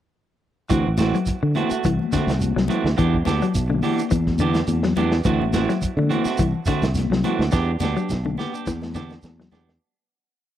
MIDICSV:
0, 0, Header, 1, 8, 480
1, 0, Start_track
1, 0, Tempo, 569260
1, 591, Time_signature, 4, 2, 24, 8
1, 8913, End_track
2, 0, Start_track
2, 0, Title_t, "Clean electric guitar"
2, 0, Program_c, 0, 27
2, 586, Note_on_c, 0, 52, 60
2, 588, Note_on_c, 0, 60, 67
2, 590, Note_on_c, 0, 66, 68
2, 741, Note_off_c, 0, 52, 0
2, 742, Note_off_c, 0, 60, 0
2, 743, Note_off_c, 0, 66, 0
2, 823, Note_on_c, 0, 52, 59
2, 827, Note_on_c, 0, 57, 57
2, 830, Note_on_c, 0, 60, 59
2, 834, Note_on_c, 0, 66, 62
2, 980, Note_off_c, 0, 52, 0
2, 982, Note_off_c, 0, 57, 0
2, 983, Note_off_c, 0, 60, 0
2, 985, Note_off_c, 0, 66, 0
2, 1307, Note_on_c, 0, 52, 51
2, 1315, Note_on_c, 0, 57, 57
2, 1316, Note_on_c, 0, 60, 59
2, 1321, Note_on_c, 0, 66, 61
2, 1429, Note_off_c, 0, 66, 0
2, 1437, Note_off_c, 0, 60, 0
2, 1439, Note_on_c, 0, 66, 46
2, 1440, Note_off_c, 0, 52, 0
2, 1441, Note_off_c, 0, 57, 0
2, 1451, Note_on_c, 0, 57, 41
2, 1577, Note_off_c, 0, 66, 0
2, 1583, Note_off_c, 0, 57, 0
2, 1795, Note_on_c, 0, 57, 58
2, 1796, Note_on_c, 0, 60, 58
2, 1799, Note_on_c, 0, 66, 61
2, 1946, Note_off_c, 0, 57, 0
2, 1946, Note_off_c, 0, 60, 0
2, 1948, Note_off_c, 0, 66, 0
2, 2269, Note_on_c, 0, 57, 56
2, 2270, Note_on_c, 0, 52, 52
2, 2275, Note_on_c, 0, 60, 54
2, 2275, Note_on_c, 0, 66, 53
2, 2423, Note_off_c, 0, 57, 0
2, 2424, Note_off_c, 0, 52, 0
2, 2426, Note_off_c, 0, 60, 0
2, 2426, Note_off_c, 0, 66, 0
2, 2504, Note_on_c, 0, 52, 71
2, 2508, Note_on_c, 0, 59, 65
2, 2510, Note_on_c, 0, 62, 68
2, 2510, Note_on_c, 0, 67, 73
2, 2660, Note_off_c, 0, 52, 0
2, 2662, Note_off_c, 0, 59, 0
2, 2664, Note_off_c, 0, 62, 0
2, 2664, Note_off_c, 0, 67, 0
2, 2751, Note_on_c, 0, 59, 61
2, 2751, Note_on_c, 0, 62, 60
2, 2755, Note_on_c, 0, 67, 69
2, 2904, Note_off_c, 0, 59, 0
2, 2904, Note_off_c, 0, 62, 0
2, 2906, Note_off_c, 0, 67, 0
2, 3227, Note_on_c, 0, 52, 59
2, 3230, Note_on_c, 0, 59, 58
2, 3234, Note_on_c, 0, 67, 57
2, 3237, Note_on_c, 0, 62, 62
2, 3382, Note_off_c, 0, 52, 0
2, 3383, Note_off_c, 0, 59, 0
2, 3385, Note_off_c, 0, 67, 0
2, 3387, Note_off_c, 0, 62, 0
2, 3716, Note_on_c, 0, 52, 64
2, 3718, Note_on_c, 0, 59, 61
2, 3719, Note_on_c, 0, 62, 64
2, 3723, Note_on_c, 0, 67, 73
2, 3866, Note_off_c, 0, 52, 0
2, 3867, Note_off_c, 0, 59, 0
2, 3868, Note_off_c, 0, 62, 0
2, 3870, Note_off_c, 0, 67, 0
2, 4186, Note_on_c, 0, 52, 56
2, 4188, Note_on_c, 0, 59, 55
2, 4195, Note_on_c, 0, 62, 64
2, 4196, Note_on_c, 0, 67, 65
2, 4341, Note_off_c, 0, 52, 0
2, 4342, Note_off_c, 0, 59, 0
2, 4346, Note_off_c, 0, 62, 0
2, 4346, Note_off_c, 0, 67, 0
2, 4427, Note_on_c, 0, 52, 71
2, 4431, Note_on_c, 0, 57, 68
2, 4432, Note_on_c, 0, 60, 70
2, 4434, Note_on_c, 0, 66, 76
2, 4581, Note_off_c, 0, 52, 0
2, 4583, Note_off_c, 0, 57, 0
2, 4584, Note_off_c, 0, 60, 0
2, 4585, Note_off_c, 0, 66, 0
2, 4665, Note_on_c, 0, 52, 63
2, 4670, Note_on_c, 0, 57, 57
2, 4672, Note_on_c, 0, 60, 63
2, 4675, Note_on_c, 0, 66, 61
2, 4820, Note_off_c, 0, 52, 0
2, 4823, Note_off_c, 0, 57, 0
2, 4824, Note_off_c, 0, 60, 0
2, 4825, Note_off_c, 0, 66, 0
2, 5140, Note_on_c, 0, 52, 57
2, 5144, Note_on_c, 0, 57, 54
2, 5147, Note_on_c, 0, 60, 63
2, 5147, Note_on_c, 0, 66, 63
2, 5255, Note_off_c, 0, 66, 0
2, 5262, Note_off_c, 0, 60, 0
2, 5265, Note_on_c, 0, 66, 51
2, 5269, Note_off_c, 0, 57, 0
2, 5272, Note_on_c, 0, 60, 51
2, 5275, Note_off_c, 0, 52, 0
2, 5280, Note_on_c, 0, 57, 47
2, 5409, Note_off_c, 0, 66, 0
2, 5412, Note_off_c, 0, 60, 0
2, 5416, Note_off_c, 0, 57, 0
2, 5622, Note_on_c, 0, 57, 62
2, 5626, Note_on_c, 0, 66, 69
2, 5627, Note_on_c, 0, 60, 61
2, 5778, Note_off_c, 0, 57, 0
2, 5780, Note_off_c, 0, 66, 0
2, 5781, Note_off_c, 0, 60, 0
2, 6105, Note_on_c, 0, 52, 54
2, 6109, Note_on_c, 0, 57, 66
2, 6110, Note_on_c, 0, 60, 63
2, 6110, Note_on_c, 0, 66, 66
2, 6259, Note_off_c, 0, 52, 0
2, 6261, Note_off_c, 0, 57, 0
2, 6262, Note_off_c, 0, 60, 0
2, 6262, Note_off_c, 0, 66, 0
2, 6340, Note_on_c, 0, 59, 64
2, 6343, Note_on_c, 0, 62, 76
2, 6347, Note_on_c, 0, 67, 78
2, 6497, Note_off_c, 0, 59, 0
2, 6498, Note_off_c, 0, 62, 0
2, 6500, Note_off_c, 0, 67, 0
2, 6584, Note_on_c, 0, 59, 66
2, 6592, Note_on_c, 0, 62, 70
2, 6597, Note_on_c, 0, 67, 69
2, 6701, Note_off_c, 0, 67, 0
2, 6711, Note_off_c, 0, 62, 0
2, 6711, Note_on_c, 0, 67, 43
2, 6717, Note_off_c, 0, 59, 0
2, 6721, Note_on_c, 0, 62, 41
2, 6851, Note_off_c, 0, 67, 0
2, 6856, Note_off_c, 0, 62, 0
2, 7066, Note_on_c, 0, 59, 66
2, 7075, Note_on_c, 0, 67, 66
2, 7182, Note_off_c, 0, 67, 0
2, 7192, Note_on_c, 0, 67, 57
2, 7198, Note_off_c, 0, 59, 0
2, 7205, Note_on_c, 0, 62, 44
2, 7331, Note_off_c, 0, 67, 0
2, 7338, Note_off_c, 0, 62, 0
2, 7544, Note_on_c, 0, 59, 64
2, 7548, Note_on_c, 0, 62, 68
2, 7550, Note_on_c, 0, 67, 75
2, 7698, Note_off_c, 0, 59, 0
2, 7700, Note_off_c, 0, 62, 0
2, 7702, Note_off_c, 0, 67, 0
2, 8024, Note_on_c, 0, 59, 60
2, 8030, Note_on_c, 0, 62, 60
2, 8035, Note_on_c, 0, 67, 63
2, 8179, Note_off_c, 0, 59, 0
2, 8182, Note_off_c, 0, 62, 0
2, 8184, Note_off_c, 0, 67, 0
2, 8913, End_track
3, 0, Start_track
3, 0, Title_t, "Clean electric guitar"
3, 0, Program_c, 1, 27
3, 594, Note_on_c, 1, 52, 75
3, 760, Note_off_c, 1, 52, 0
3, 967, Note_on_c, 1, 54, 58
3, 1133, Note_off_c, 1, 54, 0
3, 1203, Note_on_c, 1, 50, 64
3, 1370, Note_off_c, 1, 50, 0
3, 1561, Note_on_c, 1, 52, 77
3, 1725, Note_off_c, 1, 52, 0
3, 1797, Note_on_c, 1, 50, 71
3, 1962, Note_off_c, 1, 50, 0
3, 2162, Note_on_c, 1, 54, 63
3, 2329, Note_off_c, 1, 54, 0
3, 2513, Note_on_c, 1, 52, 79
3, 2680, Note_off_c, 1, 52, 0
3, 2887, Note_on_c, 1, 54, 62
3, 3053, Note_off_c, 1, 54, 0
3, 3120, Note_on_c, 1, 50, 62
3, 3288, Note_off_c, 1, 50, 0
3, 3466, Note_on_c, 1, 52, 84
3, 3635, Note_off_c, 1, 52, 0
3, 3711, Note_on_c, 1, 50, 66
3, 3878, Note_off_c, 1, 50, 0
3, 4085, Note_on_c, 1, 54, 61
3, 4251, Note_off_c, 1, 54, 0
3, 4430, Note_on_c, 1, 52, 80
3, 4597, Note_off_c, 1, 52, 0
3, 4799, Note_on_c, 1, 54, 63
3, 4967, Note_off_c, 1, 54, 0
3, 5049, Note_on_c, 1, 50, 62
3, 5213, Note_off_c, 1, 50, 0
3, 5391, Note_on_c, 1, 52, 83
3, 5557, Note_off_c, 1, 52, 0
3, 5632, Note_on_c, 1, 50, 76
3, 5798, Note_off_c, 1, 50, 0
3, 6004, Note_on_c, 1, 54, 64
3, 6169, Note_off_c, 1, 54, 0
3, 6718, Note_on_c, 1, 54, 64
3, 6885, Note_off_c, 1, 54, 0
3, 6963, Note_on_c, 1, 50, 68
3, 7128, Note_off_c, 1, 50, 0
3, 7315, Note_on_c, 1, 52, 85
3, 7480, Note_off_c, 1, 52, 0
3, 7552, Note_on_c, 1, 50, 70
3, 7717, Note_off_c, 1, 50, 0
3, 7923, Note_on_c, 1, 54, 64
3, 8088, Note_off_c, 1, 54, 0
3, 8913, End_track
4, 0, Start_track
4, 0, Title_t, "Fingered electric bass"
4, 0, Program_c, 2, 33
4, 597, Note_on_c, 2, 38, 95
4, 709, Note_off_c, 2, 38, 0
4, 732, Note_on_c, 2, 33, 80
4, 939, Note_off_c, 2, 33, 0
4, 1202, Note_on_c, 2, 50, 76
4, 1299, Note_off_c, 2, 50, 0
4, 1561, Note_on_c, 2, 36, 83
4, 1672, Note_off_c, 2, 36, 0
4, 1914, Note_on_c, 2, 36, 81
4, 2129, Note_off_c, 2, 36, 0
4, 2160, Note_on_c, 2, 36, 73
4, 2258, Note_off_c, 2, 36, 0
4, 2397, Note_on_c, 2, 38, 85
4, 2496, Note_off_c, 2, 38, 0
4, 2519, Note_on_c, 2, 40, 92
4, 2727, Note_off_c, 2, 40, 0
4, 2753, Note_on_c, 2, 38, 76
4, 2867, Note_off_c, 2, 38, 0
4, 2994, Note_on_c, 2, 35, 86
4, 3205, Note_off_c, 2, 35, 0
4, 3470, Note_on_c, 2, 40, 83
4, 3893, Note_off_c, 2, 40, 0
4, 3943, Note_on_c, 2, 40, 84
4, 4158, Note_off_c, 2, 40, 0
4, 4189, Note_on_c, 2, 40, 74
4, 4401, Note_off_c, 2, 40, 0
4, 4428, Note_on_c, 2, 38, 97
4, 4544, Note_off_c, 2, 38, 0
4, 4556, Note_on_c, 2, 33, 86
4, 4770, Note_off_c, 2, 33, 0
4, 5032, Note_on_c, 2, 50, 87
4, 5133, Note_off_c, 2, 50, 0
4, 5388, Note_on_c, 2, 36, 85
4, 5503, Note_off_c, 2, 36, 0
4, 5750, Note_on_c, 2, 36, 87
4, 5966, Note_off_c, 2, 36, 0
4, 5986, Note_on_c, 2, 36, 77
4, 6089, Note_off_c, 2, 36, 0
4, 6232, Note_on_c, 2, 38, 89
4, 6332, Note_off_c, 2, 38, 0
4, 6351, Note_on_c, 2, 40, 97
4, 6561, Note_off_c, 2, 40, 0
4, 6580, Note_on_c, 2, 38, 84
4, 6698, Note_off_c, 2, 38, 0
4, 6836, Note_on_c, 2, 35, 91
4, 7044, Note_off_c, 2, 35, 0
4, 7313, Note_on_c, 2, 40, 86
4, 7733, Note_off_c, 2, 40, 0
4, 7791, Note_on_c, 2, 40, 88
4, 8001, Note_off_c, 2, 40, 0
4, 8026, Note_on_c, 2, 40, 82
4, 8238, Note_off_c, 2, 40, 0
4, 8913, End_track
5, 0, Start_track
5, 0, Title_t, "Muted clean electric guitar strokes"
5, 587, Note_on_c, 9, 29, 62
5, 671, Note_off_c, 9, 29, 0
5, 1447, Note_on_c, 9, 29, 46
5, 1531, Note_off_c, 9, 29, 0
5, 1791, Note_on_c, 9, 29, 61
5, 1875, Note_off_c, 9, 29, 0
5, 2748, Note_on_c, 9, 29, 62
5, 2833, Note_off_c, 9, 29, 0
5, 5618, Note_on_c, 9, 29, 63
5, 5702, Note_off_c, 9, 29, 0
5, 6345, Note_on_c, 9, 29, 87
5, 6430, Note_off_c, 9, 29, 0
5, 8913, End_track
6, 0, Start_track
6, 0, Title_t, "Muted fingered electric bass strokes"
6, 1444, Note_on_c, 9, 29, 33
6, 1528, Note_off_c, 9, 29, 0
6, 1796, Note_on_c, 9, 29, 34
6, 1881, Note_off_c, 9, 29, 0
6, 5273, Note_on_c, 9, 29, 32
6, 5357, Note_off_c, 9, 29, 0
6, 5633, Note_on_c, 9, 29, 38
6, 5717, Note_off_c, 9, 29, 0
6, 8913, End_track
7, 0, Start_track
7, 0, Title_t, "Shekere"
7, 589, Note_on_c, 9, 82, 60
7, 673, Note_off_c, 9, 82, 0
7, 825, Note_on_c, 9, 82, 71
7, 910, Note_off_c, 9, 82, 0
7, 963, Note_on_c, 9, 82, 26
7, 1047, Note_off_c, 9, 82, 0
7, 1064, Note_on_c, 9, 82, 71
7, 1148, Note_off_c, 9, 82, 0
7, 1306, Note_on_c, 9, 82, 24
7, 1390, Note_off_c, 9, 82, 0
7, 1439, Note_on_c, 9, 82, 55
7, 1523, Note_off_c, 9, 82, 0
7, 1551, Note_on_c, 9, 82, 59
7, 1635, Note_off_c, 9, 82, 0
7, 1791, Note_on_c, 9, 82, 83
7, 1875, Note_off_c, 9, 82, 0
7, 1926, Note_on_c, 9, 82, 27
7, 2010, Note_off_c, 9, 82, 0
7, 2030, Note_on_c, 9, 82, 71
7, 2115, Note_off_c, 9, 82, 0
7, 2276, Note_on_c, 9, 82, 26
7, 2360, Note_off_c, 9, 82, 0
7, 2510, Note_on_c, 9, 82, 61
7, 2595, Note_off_c, 9, 82, 0
7, 2755, Note_on_c, 9, 82, 75
7, 2839, Note_off_c, 9, 82, 0
7, 2881, Note_on_c, 9, 82, 26
7, 2965, Note_off_c, 9, 82, 0
7, 2991, Note_on_c, 9, 82, 75
7, 3075, Note_off_c, 9, 82, 0
7, 3227, Note_on_c, 9, 82, 26
7, 3311, Note_off_c, 9, 82, 0
7, 3361, Note_on_c, 9, 82, 58
7, 3445, Note_off_c, 9, 82, 0
7, 3466, Note_on_c, 9, 82, 64
7, 3551, Note_off_c, 9, 82, 0
7, 3700, Note_on_c, 9, 82, 78
7, 3784, Note_off_c, 9, 82, 0
7, 3827, Note_on_c, 9, 82, 27
7, 3912, Note_off_c, 9, 82, 0
7, 3941, Note_on_c, 9, 82, 67
7, 4025, Note_off_c, 9, 82, 0
7, 4187, Note_on_c, 9, 82, 25
7, 4271, Note_off_c, 9, 82, 0
7, 4419, Note_on_c, 9, 82, 67
7, 4503, Note_off_c, 9, 82, 0
7, 4667, Note_on_c, 9, 82, 77
7, 4751, Note_off_c, 9, 82, 0
7, 4800, Note_on_c, 9, 82, 26
7, 4885, Note_off_c, 9, 82, 0
7, 4906, Note_on_c, 9, 82, 77
7, 4990, Note_off_c, 9, 82, 0
7, 5147, Note_on_c, 9, 82, 26
7, 5231, Note_off_c, 9, 82, 0
7, 5271, Note_on_c, 9, 82, 63
7, 5356, Note_off_c, 9, 82, 0
7, 5378, Note_on_c, 9, 82, 64
7, 5463, Note_off_c, 9, 82, 0
7, 5613, Note_on_c, 9, 82, 89
7, 5698, Note_off_c, 9, 82, 0
7, 5748, Note_on_c, 9, 82, 26
7, 5833, Note_off_c, 9, 82, 0
7, 5857, Note_on_c, 9, 82, 77
7, 5941, Note_off_c, 9, 82, 0
7, 6103, Note_on_c, 9, 82, 28
7, 6187, Note_off_c, 9, 82, 0
7, 6340, Note_on_c, 9, 82, 59
7, 6424, Note_off_c, 9, 82, 0
7, 6579, Note_on_c, 9, 82, 80
7, 6663, Note_off_c, 9, 82, 0
7, 6716, Note_on_c, 9, 82, 28
7, 6800, Note_off_c, 9, 82, 0
7, 6827, Note_on_c, 9, 82, 75
7, 6912, Note_off_c, 9, 82, 0
7, 7073, Note_on_c, 9, 82, 26
7, 7157, Note_off_c, 9, 82, 0
7, 7203, Note_on_c, 9, 82, 62
7, 7288, Note_off_c, 9, 82, 0
7, 7308, Note_on_c, 9, 82, 70
7, 7393, Note_off_c, 9, 82, 0
7, 7543, Note_on_c, 9, 82, 83
7, 7628, Note_off_c, 9, 82, 0
7, 7668, Note_on_c, 9, 82, 29
7, 7752, Note_off_c, 9, 82, 0
7, 7779, Note_on_c, 9, 82, 76
7, 7863, Note_off_c, 9, 82, 0
7, 8017, Note_on_c, 9, 82, 29
7, 8101, Note_off_c, 9, 82, 0
7, 8913, End_track
8, 0, Start_track
8, 0, Title_t, "Drums"
8, 597, Note_on_c, 9, 36, 79
8, 601, Note_on_c, 9, 42, 57
8, 682, Note_off_c, 9, 36, 0
8, 685, Note_off_c, 9, 42, 0
8, 823, Note_on_c, 9, 63, 84
8, 843, Note_on_c, 9, 42, 45
8, 846, Note_on_c, 9, 38, 61
8, 907, Note_off_c, 9, 63, 0
8, 927, Note_off_c, 9, 42, 0
8, 930, Note_off_c, 9, 38, 0
8, 975, Note_on_c, 9, 42, 47
8, 1059, Note_off_c, 9, 42, 0
8, 1080, Note_on_c, 9, 36, 55
8, 1084, Note_on_c, 9, 42, 60
8, 1164, Note_off_c, 9, 36, 0
8, 1169, Note_off_c, 9, 42, 0
8, 1307, Note_on_c, 9, 63, 70
8, 1324, Note_on_c, 9, 42, 48
8, 1391, Note_off_c, 9, 63, 0
8, 1408, Note_off_c, 9, 42, 0
8, 1558, Note_on_c, 9, 36, 64
8, 1563, Note_on_c, 9, 42, 71
8, 1642, Note_off_c, 9, 36, 0
8, 1648, Note_off_c, 9, 42, 0
8, 1680, Note_on_c, 9, 63, 63
8, 1764, Note_off_c, 9, 63, 0
8, 1798, Note_on_c, 9, 36, 59
8, 1801, Note_on_c, 9, 42, 50
8, 1804, Note_on_c, 9, 38, 25
8, 1882, Note_off_c, 9, 36, 0
8, 1886, Note_off_c, 9, 42, 0
8, 1888, Note_off_c, 9, 38, 0
8, 1935, Note_on_c, 9, 42, 50
8, 1938, Note_on_c, 9, 38, 64
8, 2019, Note_off_c, 9, 42, 0
8, 2020, Note_on_c, 9, 63, 72
8, 2022, Note_off_c, 9, 38, 0
8, 2037, Note_on_c, 9, 42, 65
8, 2104, Note_off_c, 9, 63, 0
8, 2122, Note_off_c, 9, 42, 0
8, 2173, Note_on_c, 9, 38, 56
8, 2257, Note_off_c, 9, 38, 0
8, 2260, Note_on_c, 9, 63, 82
8, 2280, Note_on_c, 9, 42, 43
8, 2344, Note_off_c, 9, 63, 0
8, 2364, Note_off_c, 9, 42, 0
8, 2410, Note_on_c, 9, 38, 66
8, 2494, Note_off_c, 9, 38, 0
8, 2519, Note_on_c, 9, 36, 82
8, 2522, Note_on_c, 9, 42, 60
8, 2603, Note_off_c, 9, 36, 0
8, 2607, Note_off_c, 9, 42, 0
8, 2649, Note_on_c, 9, 36, 62
8, 2734, Note_off_c, 9, 36, 0
8, 2742, Note_on_c, 9, 63, 92
8, 2758, Note_on_c, 9, 42, 45
8, 2761, Note_on_c, 9, 38, 64
8, 2827, Note_off_c, 9, 63, 0
8, 2843, Note_off_c, 9, 42, 0
8, 2845, Note_off_c, 9, 38, 0
8, 2894, Note_on_c, 9, 42, 44
8, 2978, Note_off_c, 9, 42, 0
8, 2995, Note_on_c, 9, 42, 60
8, 2996, Note_on_c, 9, 36, 56
8, 3079, Note_off_c, 9, 42, 0
8, 3080, Note_off_c, 9, 36, 0
8, 3115, Note_on_c, 9, 63, 62
8, 3200, Note_off_c, 9, 63, 0
8, 3230, Note_on_c, 9, 63, 73
8, 3236, Note_on_c, 9, 46, 60
8, 3315, Note_off_c, 9, 63, 0
8, 3320, Note_off_c, 9, 46, 0
8, 3366, Note_on_c, 9, 42, 45
8, 3450, Note_off_c, 9, 42, 0
8, 3470, Note_on_c, 9, 42, 59
8, 3473, Note_on_c, 9, 36, 65
8, 3554, Note_off_c, 9, 42, 0
8, 3558, Note_off_c, 9, 36, 0
8, 3599, Note_on_c, 9, 38, 28
8, 3601, Note_on_c, 9, 36, 66
8, 3605, Note_on_c, 9, 63, 63
8, 3683, Note_off_c, 9, 38, 0
8, 3685, Note_off_c, 9, 36, 0
8, 3689, Note_off_c, 9, 63, 0
8, 3707, Note_on_c, 9, 42, 43
8, 3792, Note_off_c, 9, 42, 0
8, 3833, Note_on_c, 9, 42, 47
8, 3835, Note_on_c, 9, 38, 64
8, 3917, Note_off_c, 9, 42, 0
8, 3920, Note_off_c, 9, 38, 0
8, 3942, Note_on_c, 9, 42, 62
8, 3950, Note_on_c, 9, 63, 77
8, 4026, Note_off_c, 9, 42, 0
8, 4035, Note_off_c, 9, 63, 0
8, 4073, Note_on_c, 9, 38, 62
8, 4158, Note_off_c, 9, 38, 0
8, 4178, Note_on_c, 9, 42, 45
8, 4189, Note_on_c, 9, 63, 89
8, 4262, Note_off_c, 9, 42, 0
8, 4273, Note_off_c, 9, 63, 0
8, 4313, Note_on_c, 9, 38, 69
8, 4397, Note_off_c, 9, 38, 0
8, 4418, Note_on_c, 9, 42, 64
8, 4428, Note_on_c, 9, 36, 87
8, 4502, Note_off_c, 9, 42, 0
8, 4512, Note_off_c, 9, 36, 0
8, 4567, Note_on_c, 9, 63, 67
8, 4651, Note_off_c, 9, 63, 0
8, 4667, Note_on_c, 9, 42, 49
8, 4670, Note_on_c, 9, 38, 67
8, 4672, Note_on_c, 9, 63, 90
8, 4752, Note_off_c, 9, 42, 0
8, 4754, Note_off_c, 9, 38, 0
8, 4756, Note_off_c, 9, 63, 0
8, 4803, Note_on_c, 9, 42, 50
8, 4806, Note_on_c, 9, 38, 26
8, 4888, Note_off_c, 9, 42, 0
8, 4890, Note_off_c, 9, 38, 0
8, 4911, Note_on_c, 9, 42, 63
8, 4912, Note_on_c, 9, 36, 60
8, 4995, Note_off_c, 9, 42, 0
8, 4996, Note_off_c, 9, 36, 0
8, 5045, Note_on_c, 9, 63, 65
8, 5129, Note_off_c, 9, 63, 0
8, 5150, Note_on_c, 9, 63, 75
8, 5153, Note_on_c, 9, 42, 50
8, 5234, Note_off_c, 9, 63, 0
8, 5238, Note_off_c, 9, 42, 0
8, 5288, Note_on_c, 9, 38, 26
8, 5372, Note_off_c, 9, 38, 0
8, 5390, Note_on_c, 9, 36, 73
8, 5392, Note_on_c, 9, 42, 70
8, 5475, Note_off_c, 9, 36, 0
8, 5476, Note_off_c, 9, 42, 0
8, 5632, Note_on_c, 9, 36, 60
8, 5635, Note_on_c, 9, 42, 52
8, 5637, Note_on_c, 9, 38, 26
8, 5716, Note_off_c, 9, 36, 0
8, 5719, Note_off_c, 9, 42, 0
8, 5722, Note_off_c, 9, 38, 0
8, 5760, Note_on_c, 9, 42, 49
8, 5762, Note_on_c, 9, 38, 67
8, 5844, Note_off_c, 9, 42, 0
8, 5847, Note_off_c, 9, 38, 0
8, 5860, Note_on_c, 9, 63, 75
8, 5880, Note_on_c, 9, 42, 71
8, 5882, Note_on_c, 9, 38, 29
8, 5945, Note_off_c, 9, 63, 0
8, 5964, Note_off_c, 9, 42, 0
8, 5966, Note_off_c, 9, 38, 0
8, 6009, Note_on_c, 9, 38, 59
8, 6094, Note_off_c, 9, 38, 0
8, 6106, Note_on_c, 9, 63, 86
8, 6112, Note_on_c, 9, 42, 53
8, 6191, Note_off_c, 9, 63, 0
8, 6196, Note_off_c, 9, 42, 0
8, 6247, Note_on_c, 9, 38, 66
8, 6332, Note_off_c, 9, 38, 0
8, 6353, Note_on_c, 9, 36, 89
8, 6358, Note_on_c, 9, 38, 44
8, 6438, Note_off_c, 9, 36, 0
8, 6442, Note_off_c, 9, 38, 0
8, 6580, Note_on_c, 9, 63, 92
8, 6604, Note_on_c, 9, 38, 52
8, 6664, Note_off_c, 9, 63, 0
8, 6689, Note_off_c, 9, 38, 0
8, 6834, Note_on_c, 9, 36, 59
8, 6843, Note_on_c, 9, 38, 55
8, 6918, Note_off_c, 9, 36, 0
8, 6928, Note_off_c, 9, 38, 0
8, 6954, Note_on_c, 9, 63, 64
8, 7038, Note_off_c, 9, 63, 0
8, 7061, Note_on_c, 9, 63, 76
8, 7081, Note_on_c, 9, 38, 54
8, 7145, Note_off_c, 9, 63, 0
8, 7166, Note_off_c, 9, 38, 0
8, 7311, Note_on_c, 9, 36, 73
8, 7314, Note_on_c, 9, 38, 68
8, 7395, Note_off_c, 9, 36, 0
8, 7399, Note_off_c, 9, 38, 0
8, 7436, Note_on_c, 9, 63, 69
8, 7439, Note_on_c, 9, 38, 54
8, 7520, Note_off_c, 9, 63, 0
8, 7524, Note_off_c, 9, 38, 0
8, 7557, Note_on_c, 9, 38, 68
8, 7641, Note_off_c, 9, 38, 0
8, 7685, Note_on_c, 9, 38, 59
8, 7769, Note_off_c, 9, 38, 0
8, 7794, Note_on_c, 9, 63, 79
8, 7796, Note_on_c, 9, 38, 72
8, 7878, Note_off_c, 9, 63, 0
8, 7880, Note_off_c, 9, 38, 0
8, 7931, Note_on_c, 9, 38, 63
8, 8015, Note_off_c, 9, 38, 0
8, 8031, Note_on_c, 9, 63, 92
8, 8039, Note_on_c, 9, 38, 71
8, 8115, Note_off_c, 9, 63, 0
8, 8123, Note_off_c, 9, 38, 0
8, 8170, Note_on_c, 9, 38, 67
8, 8255, Note_off_c, 9, 38, 0
8, 8913, End_track
0, 0, End_of_file